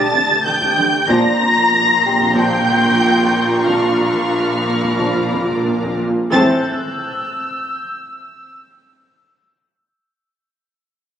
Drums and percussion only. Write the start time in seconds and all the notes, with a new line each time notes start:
0.14 taiko
0.30 taiko low-mid
0.61 taiko
1.09 taiko
2.21 taiko
2.37 taiko low-mid
2.53 taiko low-mid
2.69 taiko
2.85 taiko low-mid
3.18 taiko
3.67 taiko
4.84 taiko
5.00 taiko low-mid
5.16 taiko low-mid
5.33 taiko
5.50 taiko low-mid
5.83 taiko